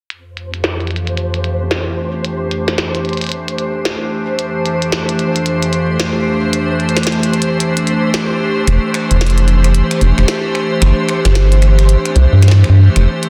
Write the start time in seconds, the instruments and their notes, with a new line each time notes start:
0.10 ambient pad F2, synth texture C5, closed hi-hat
0.31 ambient pad A3
0.37 ambient pad D4 G4, closed hi-hat
0.46 ambient pad E3
0.54 closed hi-hat
0.64 snare, closed hi-hat
0.80 closed hi-hat
0.87 closed hi-hat
0.91 closed hi-hat
0.96 closed hi-hat
1.07 ambient pad C5, closed hi-hat
1.17 closed hi-hat
1.34 closed hi-hat
1.44 closed hi-hat
1.71 snare, closed hi-hat
2.25 closed hi-hat
2.51 closed hi-hat
2.68 snare, closed hi-hat
2.78 snare, closed hi-hat
2.95 closed hi-hat
3.05 closed hi-hat
3.09 closed hi-hat
3.13 closed hi-hat
3.17 closed hi-hat
3.21 closed hi-hat
3.24 closed hi-hat
3.27 closed hi-hat
3.29 closed hi-hat
3.32 closed hi-hat
3.48 closed hi-hat
3.58 closed hi-hat
3.85 snare, closed hi-hat
4.39 ambient pad F2, closed hi-hat
4.66 closed hi-hat
4.82 closed hi-hat
4.92 snare, closed hi-hat
5.09 closed hi-hat
5.19 closed hi-hat
5.36 closed hi-hat
5.46 closed hi-hat
5.63 closed hi-hat
5.73 closed hi-hat
6.00 snare, closed hi-hat
6.53 closed hi-hat
6.80 closed hi-hat
6.89 closed hi-hat
6.97 snare, closed hi-hat
7.03 snare, closed hi-hat
7.07 closed hi-hat
7.12 closed hi-hat
7.23 closed hi-hat
7.34 closed hi-hat
7.42 closed hi-hat
7.60 closed hi-hat
7.77 closed hi-hat
7.87 closed hi-hat
8.14 snare, closed hi-hat
8.67 analog synth bass F1, finger snap, closed hi-hat
8.94 finger snap, closed hi-hat
9.11 analog synth bass F1, closed hi-hat
9.21 finger snap, snare, closed hi-hat
9.27 closed hi-hat
9.30 closed hi-hat
9.38 closed hi-hat
9.48 closed hi-hat
9.64 finger snap, closed hi-hat
9.74 closed hi-hat
9.91 finger snap, closed hi-hat
10.01 analog synth bass F1, closed hi-hat
10.18 analog synth bass F1, finger snap
10.28 snare, closed hi-hat
10.55 finger snap
10.82 analog synth bass G1, finger snap, closed hi-hat
11.09 finger snap, closed hi-hat
11.25 analog synth bass G1, snare, closed hi-hat
11.35 snare, closed hi-hat
11.52 closed hi-hat
11.62 finger snap, closed hi-hat
11.79 finger snap, closed hi-hat
11.89 closed hi-hat
12.05 finger snap, closed hi-hat
12.16 analog synth bass C2, closed hi-hat
12.32 analog synth bass G2
12.43 finger snap, snare, closed hi-hat
12.48 snare
12.51 snare
12.64 finger snap
12.69 analog synth bass G2
12.96 analog synth bass F1, finger snap, closed hi-hat
13.23 closed hi-hat